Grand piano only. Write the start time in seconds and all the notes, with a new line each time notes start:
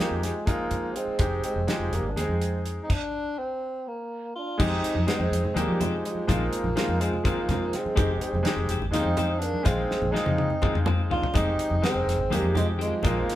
0.00 G#3 C4 D#4 G4
0.46 G#3 C4 D#4 F4
1.19 G#3 C4 D#4 G4
1.67 G#3 C4 D#4 G4
2.16 G#3 C4 D#4 G#4
4.58 G#3 C4 D#4 G4
5.07 G#3 C4 D#4 G#4
5.54 G#3 C4 D#4 G4
6.27 G#3 C4 D#4 F4
6.75 G#3 C4 D#4 F4
7.24 G#3 C4 D#4 F4
7.95 G#3 C4 D#4 G4
8.43 G#3 C4 D#4 G4
8.91 G#3 C4 D#4 F4
9.63 G#3 C4 D#4 F4
10.12 G#3 C4 D#4 F4
10.62 G#3 C4 D#4 F4
11.34 G#3 C4 D#4 G4
11.81 G#3 C4 D#4 A#4
12.30 G#3 C4 D#4 G4
13.03 G#3 C4 D#4 F4